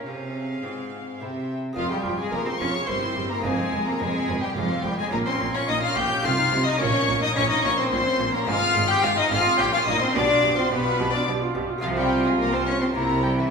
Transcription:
0.06 C3 C#4 G#4 F5
0.62 G#2 G#3 C4 F4
1.20 C3 C4 E4 C5 E5 G5
1.73 F1 F2 G#3 C4 F4 F5
1.77 F2 F3 F4
1.91 G3 G4 G#4 G5
2.04 F1 F2 F4
2.19 G#3 G#4 G#5
2.32 F1 F2 A#3 F4 A#4 A#5
2.46 C4 G#4 C5 C6
2.60 F1 F2 C#4 F4 C#5 C#6
2.74 G#4
2.84 A#3 C4 E4
2.88 G1 G2 C4 G4 C5 C6
3.03 E4
3.17 G1 G2 G4
3.30 A#3 E4 A#4 A#5
3.40 G#3 C4 F4
3.45 F1 F2 G#3 G#4 G#5
3.59 C4
3.73 F1 F2 G#3
3.87 A#3 C4 A#4 A#5
4.00 F1 F2 G#3 G#4 G#5
4.15 C4
4.29 F1 F2 G#3
4.43 G3 C4 G4 G5
4.56 F1 F2 F3 G#3 F4 F5
4.71 C4
4.84 F1 F2 G3 G#3 G4 G5
4.99 G#3 C4 G#4 G#5
5.09 A#1 A#2 A#3 C#4 F4 A#4 A#5
5.26 C4 C#4 C5 C6
5.40 A#1 A#2 A#3
5.54 C#4 C#5 C#6
5.68 A#1 A#2 A#3 D#4 D#5 D#6
5.82 C#4 F4 F5 F6
5.96 A#1 A#2 A#3 G4 G5 G6
6.10 C#4
6.21 C2 C3 D#4 F4 A4 F5 F6
6.38 D#4
6.52 C2 C3 F4
6.66 D#4 D#5 D#6
6.77 A#1 A#2 A#3 C#4 A#4 C#5 C#6
6.94 C#4
7.08 A#1 A#2 A#3
7.22 C#4 D#4 D#5 D#6
7.36 A#1 A#2 A#3 C#4 C#5 C#6
7.50 C#4 D#4 D#5 D#6
7.64 A#1 A#2 A#3 C#4 C#5 C#6
7.78 C4 C#4 C5 C6
7.91 A#1 A#2 A#3 C4 C5 C6
8.06 C#4
8.19 A#1 A#2 A#3
8.34 A#3 C#4 A#4 A#5
8.43 G#2 G#3 C4 C5 F6
8.47 G#1 G#2 G#3 F4 F5
8.61 C4
8.75 G#1 G#2 G#3
8.90 C4 G4 G5 G6
9.03 G#1 G#2 G#3 F4 F5 F6
9.18 C4 D#4 D#5 D#6
9.31 G#1 G#2 G#3 F4 F5 F6
9.46 C4
9.56 A#1 A#2 A#3 C#4 G4 G5 G6
9.73 C#4 F4 F5 F6
9.86 A#1 A#2 A#3 D#4 D#5 D#6
10.00 C4 C#4 C5 C6
10.12 B1 B2 D4 F4 G4 D5 D6
10.30 F4
10.42 B1 B2 G4
10.57 C4 F4 C5 C6
10.70 B1 B2 B3 G4 B4 B5
10.86 F4
10.98 B1 B2 G4
11.13 D4 F4 D5 D6
11.27 B1 B2 G4
11.41 F4
11.55 B1 B2 G4
11.69 F4
11.78 G#3 C4 F4
11.82 C2 C3 F3 F4 F5
11.96 G3 G4 G5
12.25 G#3 G#4 G#5
12.39 C2 A#3 A#4 A#5
12.53 C4 C5 C6
12.66 C#4 C#5 C#6
12.81 C4 C5 C6
12.92 C2 C3 A#3 C4 E4 A#4 A#5
13.23 G3 G4 G5
13.37 E3 E4 E5
13.47 G#3

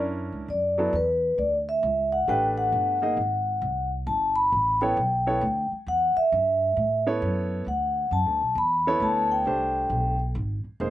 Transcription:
Already playing: F#2 C#4 D4 E4 A#4
0.32 C#2
0.48 F#2 D5
0.78 F#3 B3 E4 A4
0.93 E2 B4
1.38 D2 D5
1.69 E5
1.83 C#2
2.12 F#5
2.28 A1 A3 D4 G4 B4 G5
2.58 F#5
2.72 G1
3.02 A#3 D#4 G#4 D#5
3.17 G#1
3.62 C2
4.07 G1 A5
4.36 B5
4.52 A1
4.81 B3 E4 A4 C#5 G5
4.97 B1
5.27 B3 E4 A4 C#5
5.41 D2
5.72 muted upright bass stroke
5.87 E2 F#5
6.16 E5, muted upright bass stroke
6.32 G2
6.77 A2
7.07 B3 E4 A4 C#5
7.22 F#2
7.66 D2 F#5
8.11 F#2 A5
8.26 D2
8.41 B1
8.55 E2 B5
8.87 B3 E4 A4 C#5
9.00 D2 A5
9.31 G5
9.46 C2 A3 D4 G4 C5
9.90 B1
10.35 G#1
10.64 muted upright bass stroke
10.80 F1 A#3 D#4 G#4 C5

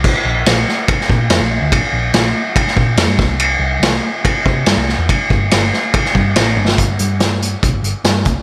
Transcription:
0.04 A#1, kick, crash
0.25 A#1
0.46 A#1, snare, ride bell
0.68 snare
0.88 kick, ride bell
1.01 snare
1.09 A#2, kick
1.30 F2, snare, ride bell
1.40 A#1
1.61 D2
1.72 A#1, kick, ride bell
1.92 A#1
2.13 A#1, snare, ride bell
2.56 kick, ride bell
2.67 snare
2.76 A#2, kick
2.97 F2, snare, ride bell
3.07 G2
3.19 C2, kick, snare
3.40 ride bell
3.59 C2
3.80 C2, snare, ride bell
4.25 kick, ride bell
4.45 C3, kick
4.66 G2, snare, ride bell
4.76 C2
4.89 snare
4.98 E2
5.09 G1, kick, ride bell
5.30 G1, kick
5.51 G1, snare, ride bell
5.73 snare
5.94 kick, ride bell
6.05 snare
6.15 G2, kick
6.36 A1, snare, ride bell
6.56 G1, high tom
6.68 snare
6.78 G1, kick, closed hi-hat
6.99 G2, closed hi-hat
7.20 snare, closed hi-hat
7.42 closed hi-hat
7.63 B1, kick, closed hi-hat
7.73 G1
7.83 G1, closed hi-hat
8.04 G2, snare, closed hi-hat
8.25 C2, kick, closed hi-hat

